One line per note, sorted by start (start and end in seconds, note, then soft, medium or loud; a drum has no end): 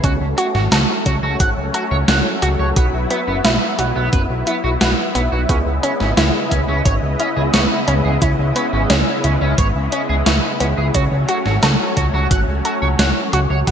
0.03 0.17 C#2 loud
0.03 5.45 F#3 medium
0.03 2.74 A3 medium
0.03 2.74 C#4 medium
0.03 0.19 C#4 loud
0.03 0.12 F#4 medium
0.03 kick loud
0.03 closed hi-hat medium
0.21 0.34 C#2 medium
0.38 0.46 F#4 loud
0.38 0.63 F#4 loud
0.38 closed hi-hat medium
0.55 0.68 G#1 medium
0.55 0.63 F#4 medium
0.55 snare soft
0.72 0.85 C#2 loud
0.72 0.77 F#4 medium
0.72 0.98 A4 medium
0.72 snare loud
0.72 closed hi-hat loud
1.06 1.19 C#2 medium
1.06 1.21 C#4 medium
1.06 1.14 F#4 medium
1.06 kick medium
1.06 closed hi-hat medium
1.23 1.36 C#2 medium
1.23 1.36 F#4 loud
1.40 1.53 G#1 loud
1.40 1.55 F#4 medium
1.40 1.49 F#5 medium
1.40 kick loud
1.40 closed hi-hat medium
1.57 1.71 C#2 medium
1.74 1.83 F#4 loud
1.74 2.07 A4 medium
1.74 closed hi-hat medium
1.91 2.05 C#2 medium
1.91 1.96 C#5 loud
2.08 2.22 C#2 loud
2.08 2.24 C#4 medium
2.08 2.17 F#5 medium
2.08 snare loud
2.08 closed hi-hat medium
2.42 2.56 C#2 loud
2.42 2.47 F#4 loud
2.42 2.68 F#4 loud
2.42 closed hi-hat medium
2.59 2.73 C#2 medium
2.59 2.68 C#5 medium
2.76 2.90 B1 loud
2.76 10.91 B3 medium
2.76 2.85 B3 medium
2.76 10.91 E4 medium
2.76 3.02 F#4 medium
2.76 kick loud
2.76 closed hi-hat medium
2.94 3.07 B1 medium
3.10 3.19 B3 loud
3.10 3.36 B3 loud
3.10 closed hi-hat medium
3.28 3.41 F#1 medium
3.28 3.36 B3 medium
3.45 3.58 B1 loud
3.45 3.50 B3 medium
3.45 3.77 E4 loud
3.45 snare loud
3.45 closed hi-hat medium
3.79 3.92 B1 medium
3.79 3.87 B3 medium
3.79 3.94 F#4 medium
3.79 closed hi-hat medium
3.96 4.09 B1 medium
3.96 4.08 B3 loud
4.13 4.26 F#1 loud
4.13 4.28 B3 medium
4.13 4.21 B4 medium
4.13 kick loud
4.13 closed hi-hat medium
4.30 4.43 B1 medium
4.47 4.55 B3 loud
4.47 4.73 E4 medium
4.47 closed hi-hat medium
4.64 4.77 B1 medium
4.64 4.69 F#4 loud
4.81 4.94 B1 loud
4.81 5.07 F#4 medium
4.81 4.89 B4 medium
4.81 snare loud
4.81 closed hi-hat medium
5.15 5.28 B1 medium
5.15 5.20 B3 loud
5.15 5.30 B3 loud
5.15 closed hi-hat medium
5.32 5.46 B1 medium
5.32 5.41 F#4 medium
5.49 5.63 C#2 loud
5.49 10.91 C#3 medium
5.49 10.91 G#3 medium
5.49 5.65 B3 loud
5.49 5.58 C#4 medium
5.49 10.91 D#5 medium
5.49 kick loud
5.49 closed hi-hat medium
5.66 5.80 C#2 medium
5.83 5.92 C#4 loud
5.83 6.09 C#4 loud
5.83 closed hi-hat medium
6.00 6.14 G#1 medium
6.00 6.09 C#4 medium
6.00 snare soft
6.17 6.31 C#2 loud
6.17 6.22 C#4 medium
6.17 6.43 E4 medium
6.17 snare loud
6.17 closed hi-hat medium
6.51 6.65 C#2 medium
6.51 6.67 B3 medium
6.51 6.60 C#4 medium
6.51 kick medium
6.51 closed hi-hat medium
6.68 6.82 C#2 medium
6.68 6.81 C#4 loud
6.85 6.99 G#1 loud
6.85 7.01 C#4 medium
6.85 6.94 C#5 medium
6.85 kick loud
6.85 closed hi-hat medium
7.03 7.16 C#2 medium
7.19 7.28 C#4 loud
7.19 7.52 E4 medium
7.19 closed hi-hat medium
7.37 7.50 C#2 medium
7.37 7.42 G#4 loud
7.54 7.67 C#2 loud
7.54 7.69 B3 medium
7.54 7.62 C#5 medium
7.54 snare loud
7.54 closed hi-hat medium
7.88 8.01 C#2 medium
7.88 7.93 C#4 loud
7.88 8.13 C#4 loud
7.88 closed hi-hat medium
8.05 8.18 C#2 medium
8.05 8.13 G#4 medium
8.22 8.35 C#2 loud
8.22 8.30 C#4 medium
8.22 8.48 E4 medium
8.22 kick loud
8.22 closed hi-hat medium
8.39 8.52 C#2 medium
8.56 8.82 B3 loud
8.56 8.64 C#4 loud
8.56 closed hi-hat medium
8.73 8.86 G#1 medium
8.73 8.81 C#4 medium
8.90 9.03 C#2 loud
8.90 8.95 C#4 medium
8.90 9.22 C#4 loud
8.90 snare loud
8.90 closed hi-hat medium
9.24 9.38 C#2 medium
9.24 9.33 C#4 medium
9.24 9.40 E4 medium
9.24 closed hi-hat medium
9.41 9.55 C#2 medium
9.41 9.54 C#4 loud
9.58 9.72 G#1 loud
9.58 9.74 B3 medium
9.58 9.67 C#5 medium
9.58 kick loud
9.58 closed hi-hat medium
9.75 9.89 C#2 medium
9.92 10.01 C#4 loud
9.92 10.18 C#4 medium
9.92 closed hi-hat medium
10.09 10.23 C#2 medium
10.09 10.14 G#4 loud
10.26 10.40 C#2 loud
10.26 10.52 E4 medium
10.26 10.35 C#5 medium
10.26 snare loud
10.26 closed hi-hat medium
10.60 10.74 C#2 loud
10.60 10.76 B3 loud
10.60 10.66 C#4 loud
10.60 closed hi-hat medium
10.77 10.91 C#2 medium
10.77 10.86 G#4 medium
10.94 11.08 C#2 loud
10.94 13.71 F#3 medium
10.94 13.65 A3 medium
10.94 11.10 C#4 loud
10.94 13.65 C#4 medium
10.94 11.03 F#4 medium
10.94 kick loud
10.94 closed hi-hat medium
11.12 11.25 C#2 medium
11.29 11.37 F#4 loud
11.29 11.54 F#4 loud
11.29 closed hi-hat medium
11.46 11.59 G#1 medium
11.46 11.54 F#4 medium
11.46 snare soft
11.63 11.76 C#2 loud
11.63 11.68 F#4 medium
11.63 11.88 A4 medium
11.63 snare loud
11.63 closed hi-hat medium
11.97 12.10 C#2 medium
11.97 12.12 C#4 medium
11.97 12.05 F#4 medium
11.97 kick medium
11.97 closed hi-hat medium
12.14 12.27 C#2 medium
12.14 12.27 F#4 loud
12.31 12.44 G#1 loud
12.31 12.46 F#4 medium
12.31 12.39 F#5 medium
12.31 kick loud
12.31 closed hi-hat medium
12.48 12.61 C#2 medium
12.65 12.73 F#4 loud
12.65 12.97 A4 medium
12.65 closed hi-hat medium
12.82 12.96 C#2 medium
12.82 12.87 C#5 loud
12.99 13.12 C#2 loud
12.99 13.15 C#4 medium
12.99 13.08 F#5 medium
12.99 snare loud
12.99 closed hi-hat medium
13.33 13.47 C#2 medium
13.33 13.38 F#4 loud
13.33 13.59 F#4 loud
13.33 closed hi-hat medium
13.50 13.64 C#2 medium
13.50 13.59 C#5 medium
13.67 13.71 B1 loud
13.67 13.71 B3 medium
13.67 13.71 E4 medium
13.67 13.71 F#4 medium
13.67 kick loud
13.67 closed hi-hat medium